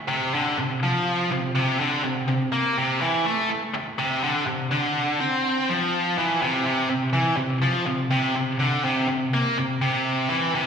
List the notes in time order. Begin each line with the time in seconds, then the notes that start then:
0.08 C3
0.34 D3
0.58 C3
0.83 F3
1.32 C3
1.56 C3
1.80 D3
2.04 C3
2.28 C3
2.52 A#3
2.77 C3
3.01 E3
3.25 A3
3.50 muted distorted electric guitar stroke
3.74 muted distorted electric guitar stroke
3.99 C3
4.23 D3
4.47 C3
4.72 D3
5.20 C4
5.70 F3
6.18 E3
6.42 C3
6.66 C3
6.90 C3
7.13 E3
7.37 C3
7.62 F3
7.87 C3
8.11 C3
8.36 C3
8.60 D3
8.85 C3
9.08 C3
9.34 A#3
9.58 C3
9.82 C3
10.30 E3
10.55 C3